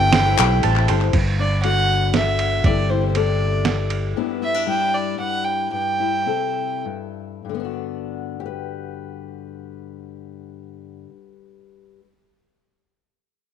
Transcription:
Already playing: G1 G2 G3 A3 C4 E4 G4 A4 C5 E5 G5 A5
0.12 G3 A3 C4 E4 G4 A4 C5 E5 C6, snare, ride
0.38 B1 A3 E4 G4 C5 E5 G5, clap
0.63 A1 G3 A3 C4 E4 G4 A4 C5 E5 A5, ride
0.76 clap
0.88 G1 A3 C4 E4 G4 A4 C5 G5 C6, ride
1.01 clap
1.13 G1 G2, kick, crash, ride
1.39 D4 D5
1.63 D3 F#4 F#5, ride
2.14 D3 E5, snare, ride
2.39 ride
2.64 G1 G2 C3 G3 E4 A4 D5, kick, ride
2.90 E4 C5
3.08 C5
3.15 C3 A4 D5, ride
3.65 G2, snare, ride
3.90 ride
4.16 G2 G3 B3 D4 E4
4.42 B3 E5
4.54 D4
4.67 G3 E4 G5
4.94 D5
5.18 G2 F#5
5.44 G5
5.72 G2 G5
6.00 E4
6.26 C3 A4
6.85 G2
7.45 G2
7.49 D3
7.54 B3
7.60 D4
7.65 F#4
8.40 G4
8.46 B4

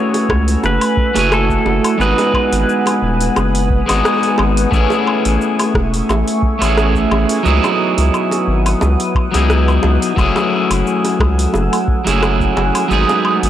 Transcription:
Already playing: A3 C#4 E4 F#4 G#4 C#5 F#5 G#5 E6
0.14 open hi-hat, high bongo, cabasa
0.29 C#2, kick, cross-stick, low woodblock
0.48 open hi-hat, cabasa
0.64 F#1 B4, high bongo, cabasa
0.81 open hi-hat, cabasa, low woodblock
0.97 kick
1.14 F#1 A3 C#4 E4 F#4, open hi-hat, high bongo, cabasa
1.19 G#5
1.32 A4, cross-stick, cabasa, low woodblock
1.50 kick, cabasa
1.66 F#1, high bongo
1.84 open hi-hat, cabasa, low woodblock
1.98 G#1 G#3 B3 D#4 F#4 B4 D#6, cabasa
2.02 G#4
2.18 open hi-hat, high bongo, cabasa
2.34 kick, low woodblock
2.52 G#1, open hi-hat, cabasa
2.69 cabasa
2.86 open hi-hat, high bongo, cabasa, low woodblock
3.02 D#1
3.21 open hi-hat, cabasa
3.36 F#1, high bongo, cabasa, low woodblock
3.55 open hi-hat, cabasa
3.70 kick
3.86 G#1 G#3 B3 D#4 F#4, open hi-hat, high bongo, cabasa, low woodblock
3.91 G#4
4.05 cross-stick, cabasa
4.23 open hi-hat, cabasa
4.38 G#1, high bongo, low woodblock
4.57 open hi-hat, cabasa
4.71 A1 A3 B3 C#4 E4 E5 G#5 C#6, kick, cabasa
4.75 G#4
4.90 high bongo, cabasa
5.07 low woodblock
5.25 A1, open hi-hat, cabasa
5.41 cabasa
5.59 open hi-hat, high bongo, cabasa, low woodblock
5.74 E1, kick, cross-stick
5.94 open hi-hat, cabasa
6.09 A1, high bongo, cabasa, low woodblock
6.28 open hi-hat, cabasa
6.43 kick
6.59 A1 A3 B3 C#4 E4, open hi-hat, high bongo, cabasa, low woodblock
6.64 G#4
6.77 cross-stick, cabasa
6.95 kick, cabasa
7.11 A1, high bongo, low woodblock
7.29 open hi-hat, cabasa
7.43 C#2 F#3 B3 D#4 E4 B4 F#5 D#6, cabasa
7.48 G#4
7.64 high bongo, cabasa, low woodblock
7.98 C#2, open hi-hat, cabasa
8.14 cabasa, low woodblock
8.31 open hi-hat, high bongo, cabasa
8.48 G#1
8.66 open hi-hat, cabasa, low woodblock
8.81 C#2, high bongo, cabasa
9.00 open hi-hat, cabasa
9.15 kick, low woodblock
9.31 C#2 F#3 B3 D#4 E4, open hi-hat, high bongo, cabasa
9.36 G#4
9.50 cross-stick, cabasa
9.68 cabasa, low woodblock
9.83 C#2, high bongo
10.02 open hi-hat, cabasa
10.16 F#1 F#3 A3 C#4 E4 G#5 E6, kick, cabasa, low woodblock
10.21 G#4
10.36 high bongo, cabasa
10.71 F#1, open hi-hat, cabasa, low woodblock
10.87 cabasa
11.04 open hi-hat, high bongo, cabasa
11.20 C#2, kick, cross-stick, low woodblock
11.39 open hi-hat, cabasa
11.54 F#1, high bongo, cabasa
11.73 open hi-hat, cabasa, low woodblock
11.88 kick
12.04 F#1 F#3 A3 C#4 E4, open hi-hat, high bongo, cabasa
12.09 G#4
12.23 cross-stick, cabasa, low woodblock
12.40 kick, cabasa
12.57 F#1, high bongo
12.75 open hi-hat, cabasa, low woodblock
12.88 G#1 F#3 G#3 B3 D#4 G#4 B5 D#6, cabasa
12.93 G#4
13.09 high bongo, cabasa
13.25 low woodblock
13.43 G#1, open hi-hat, cabasa

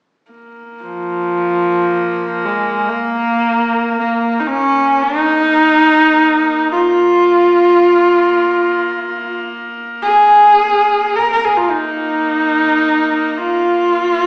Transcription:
0.31 A#3
0.84 F3
2.45 G#3
2.89 A#3
3.99 A#3
4.40 D#4
4.47 C#4
5.02 D#4
5.47 A#3
6.72 F4
10.03 G#4
10.63 A#3
11.16 A#4
11.32 A#4
11.45 G#4
11.57 F4
11.70 D#4
13.38 F4

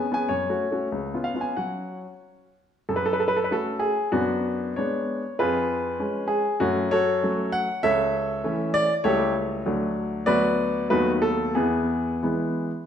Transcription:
Already playing: G#5
0.12 B3 C#4 G#4 G#5
0.29 F#2 C#5
0.49 A3 C#4 F#4
0.71 A3 C#4 F#4
0.92 C#2
1.14 B3 C#4 F4
1.24 F5
1.34 B3 C#4 F4
1.41 G#5
1.57 F#3 C#4 F#4 F#5
2.89 F#2 A4
2.96 B4
3.06 A4
3.13 B4
3.20 A4
3.28 B4
3.36 A4
3.44 B4
3.51 A3 C#4 F#4 A4
3.79 G#4
4.12 F#2 B3 D4 F#4
4.76 G#3 B3 D4 C#5
5.39 F2 F4 G#4 B4
6.00 G#3 C#4
6.28 G#4
6.60 F#2 A3 C#4 F#4
6.91 F#4 A4 C#5
7.23 F#3 A3 C#4
7.52 F#5
7.83 C#2 A4 C#5 E5
8.44 E3 A3 C#4
8.74 D5
9.04 C#2 G3 A3 E4 G4 A4 C#5
9.65 D2 F#3 A3 D4
10.26 D2 F#3 B3 F#4 B4 D5
10.90 D#2 F#3 A3 B3 D#4 F#4 B4
11.22 A4
11.55 E2 B3 E4 G#4
12.23 E3 G#3 B3

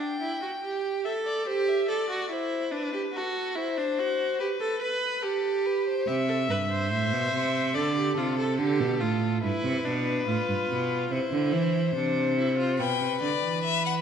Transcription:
Already playing: D4
0.00 G5
0.21 E4
0.42 F#4
0.61 G4
1.04 A4 E5
1.25 D5
1.47 G4 C5
1.68 E5
1.89 A4 D5
2.10 F#4
2.30 E4 C5
2.71 D4 B4
2.93 G4
3.13 F#4 A4
3.55 E4 C5
3.78 D4
3.99 F#4
4.40 G4 B4
4.60 A4
4.82 B4
5.23 G4 A4
5.66 B4
5.87 C5
6.07 C3 G4 E5
6.29 A4
6.49 G2 B4
6.71 C5
6.92 A2 E5
7.13 B2
7.34 C3
7.74 D3 A4 D5
7.97 G4
8.17 C3 F4 A4
8.38 A4
8.59 D3 G4
8.80 B2
9.00 A2 F4
9.42 G2 E4 B4
9.64 C3
9.85 B2 D4
10.27 A2 F4
10.49 G2
10.69 B2
11.11 C3 E4 C5
11.32 D3
11.52 E3
11.95 C3 D4
12.37 E4
12.57 F4
12.79 B2 B4 G5
13.01 C3
13.21 D3 D5
13.43 E3
13.63 E5
13.86 F#5

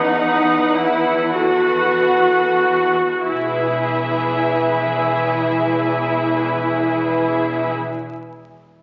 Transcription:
Already playing: E2 D#4 B4 F#5
0.76 E4
1.32 F#4 A4 B4 F#5
3.27 E1 E2 E4 G#4 B4 E5

